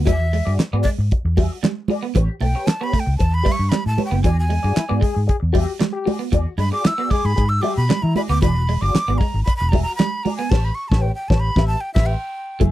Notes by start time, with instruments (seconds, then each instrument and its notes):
0.05 fingered electric bass E2, clean electric guitar E3 F#4 G#4 D5, flute E5, kick, closed hi-hat, muted conga
0.20 muted clean electric guitar stroke
0.33 clean electric guitar G#3, muted clean electric guitar stroke, open hi-hat
0.45 fingered electric bass G2, clean electric guitar F#4 G#4 D5, muted clean electric guitar stroke
0.59 muted fingered electric bass stroke, muted clean electric guitar stroke, snare, clap, closed hi-hat, high conga
0.73 fingered electric bass G#2, clean electric guitar B3 F#4 G#4 D5
0.83 clean electric guitar G#3, flute D5, muted clean electric guitar stroke, kick, open hi-hat
0.98 fingered electric bass G#2, muted clean electric guitar stroke
1.11 muted fingered electric bass stroke, muted clean electric guitar stroke, kick, closed hi-hat
1.25 fingered electric bass E2, muted clean electric guitar stroke
1.37 clean electric guitar G3 F#4 G#4 E5, kick, open hi-hat, muted conga
1.52 muted clean electric guitar stroke
1.63 clean electric guitar G3, muted clean electric guitar stroke, snare, clap, closed hi-hat, high conga
1.88 clean electric guitar F#4 G#4 D5, muted clean electric guitar stroke, open hi-hat, high conga
2.03 clean electric guitar B3, muted clean electric guitar stroke
2.15 fingered electric bass A1, clean electric guitar E3 G4 B4 C#5, kick, closed hi-hat, muted conga
2.30 muted clean electric guitar stroke
2.41 fingered electric bass B1, clean electric guitar A3, flute G5, muted clean electric guitar stroke, open hi-hat, muted conga
2.55 clean electric guitar G4 B4 C#5, muted clean electric guitar stroke
2.67 flute A5, muted clean electric guitar stroke, snare, clap, closed hi-hat, high conga
2.81 clean electric guitar B3 G4 B4 C#5, flute B5
2.93 clean electric guitar A3, muted clean electric guitar stroke, muted fingered electric bass stroke, kick, open hi-hat
3.00 flute G5
3.06 fingered electric bass C#2, muted clean electric guitar stroke
3.17 fingered electric bass E2, flute A5, muted clean electric guitar stroke, kick, closed hi-hat
3.32 flute B5, muted clean electric guitar stroke
3.43 clean electric guitar G3 G4 B4 E5, kick, open hi-hat, muted conga
3.52 flute C#6
3.57 fingered electric bass G2, muted clean electric guitar stroke
3.69 clean electric guitar G3, flute B5, muted clean electric guitar stroke, snare, clap, closed hi-hat, high conga
3.86 fingered electric bass A2, flute A5
3.98 clean electric guitar G4 B4 C#5, muted clean electric guitar stroke, open hi-hat, high conga
4.05 flute G5
4.11 fingered electric bass F#1, clean electric guitar B3, muted clean electric guitar stroke
4.23 fingered electric bass E2, clean electric guitar E3 F#4 G#4 D5, flute G#5, kick, closed hi-hat, muted conga
4.38 flute G#5, muted clean electric guitar stroke
4.49 clean electric guitar G#3, muted clean electric guitar stroke, open hi-hat, muted conga
4.63 fingered electric bass G2, clean electric guitar F#4 G#4 D5, trombone G#4, muted clean electric guitar stroke
4.76 trombone E4, muted clean electric guitar stroke, muted fingered electric bass stroke, snare, clap, closed hi-hat, high conga
4.89 fingered electric bass G#2, clean electric guitar B3 F#4 G#4 D5
5.00 clean electric guitar G#3, trombone G#4, muted clean electric guitar stroke, kick, open hi-hat
5.15 fingered electric bass G#2, muted clean electric guitar stroke
5.27 trombone G#4, muted clean electric guitar stroke, muted fingered electric bass stroke, kick, closed hi-hat
5.40 fingered electric bass E2, muted clean electric guitar stroke
5.53 clean electric guitar G3 F#4 G#4 E5, trombone G4, kick, open hi-hat, muted conga
5.68 muted clean electric guitar stroke
5.79 clean electric guitar G3, muted clean electric guitar stroke, snare, clap, closed hi-hat, high conga
5.92 trombone G4, muted clean electric guitar stroke
6.05 clean electric guitar F#4 G#4 D5, muted clean electric guitar stroke, open hi-hat, high conga
6.19 clean electric guitar B3, muted clean electric guitar stroke
6.32 fingered electric bass E2, clean electric guitar E3 F#4 G#4 D5, kick, closed hi-hat, muted conga
6.47 muted clean electric guitar stroke
6.58 fingered electric bass G2, clean electric guitar G#3, flute B5, muted clean electric guitar stroke, open hi-hat, muted conga
6.71 clean electric guitar F#4 G#4 D5, trombone G#4, flute D6, muted clean electric guitar stroke
6.85 trombone E4, flute E6, muted clean electric guitar stroke, snare, clap, closed hi-hat, high conga
6.98 clean electric guitar B3 F#4 G#4 D5
7.10 clean electric guitar G#3, trombone G#4, flute D6, muted clean electric guitar stroke, muted fingered electric bass stroke, kick, open hi-hat
7.25 fingered electric bass G#2, flute B5, muted clean electric guitar stroke
7.36 fingered electric bass G#2, trombone G#4, muted clean electric guitar stroke, kick, closed hi-hat
7.49 flute E6, muted clean electric guitar stroke
7.61 clean electric guitar G3 F#4 G#4 E5, trombone G4, flute D6, open hi-hat, muted conga
7.77 fingered electric bass B2, flute B5, muted clean electric guitar stroke
7.89 clean electric guitar G3, muted clean electric guitar stroke, snare, clap, closed hi-hat, high conga
8.02 fingered electric bass E3, trombone E4, flute A#5
8.16 clean electric guitar F#4 G#4 D5, flute B5, muted clean electric guitar stroke, open hi-hat, high conga
8.29 fingered electric bass D2, clean electric guitar B3, flute D6, muted clean electric guitar stroke
8.42 fingered electric bass E1, clean electric guitar E3 F#4 G#4 D5, flute B5, kick, closed hi-hat, muted conga
8.56 muted clean electric guitar stroke
8.69 clean electric guitar G#3, muted clean electric guitar stroke, open hi-hat
8.81 fingered electric bass G1, clean electric guitar F#4 G#4 D5, flute D6, muted clean electric guitar stroke
8.94 muted fingered electric bass stroke, muted clean electric guitar stroke, snare, clap, closed hi-hat, high conga
9.08 fingered electric bass G#1, clean electric guitar B3 F#4 G#4 D5
9.18 clean electric guitar G#3, flute A#5, muted clean electric guitar stroke, kick, open hi-hat
9.34 fingered electric bass G#1, muted clean electric guitar stroke
9.44 flute B5, muted clean electric guitar stroke, kick, closed hi-hat
9.56 flute B5
9.61 fingered electric bass E1, muted clean electric guitar stroke
9.69 clean electric guitar G3, flute A#5
9.73 clean electric guitar F#4 G#4 E5, kick, open hi-hat, muted conga
9.82 flute A#5
9.88 muted clean electric guitar stroke
9.96 clean electric guitar G3, flute B5, muted clean electric guitar stroke, closed hi-hat
10.00 snare, clap, high conga
10.23 clean electric guitar F#4 G#4 D5, flute A#5, muted clean electric guitar stroke, open hi-hat, high conga
10.37 clean electric guitar B3, flute G#5, muted clean electric guitar stroke
10.50 fingered electric bass A1, clean electric guitar G4 B4 C#5, flute A5, kick, snare, crash
10.65 flute B5
10.75 flute C#6
10.88 fingered electric bass A1, clean electric guitar C#5, flute A5, kick, snare
10.93 clean electric guitar G4 B4
11.02 flute G5
11.15 flute G5
11.28 fingered electric bass A1, clean electric guitar B4 C#5, flute A5, kick, snare
11.33 clean electric guitar G4
11.40 flute B5
11.56 fingered electric bass A1, clean electric guitar G4 B4 E5, kick, snare
11.67 flute A5
11.81 flute G5
11.94 fingered electric bass A1, clean electric guitar G4 B4 E5, flute E5, kick, snare, crash
12.06 flute G5
12.60 fingered electric bass F#1, clean electric guitar F#3 A3 E4 G#4, kick, closed hi-hat, muted conga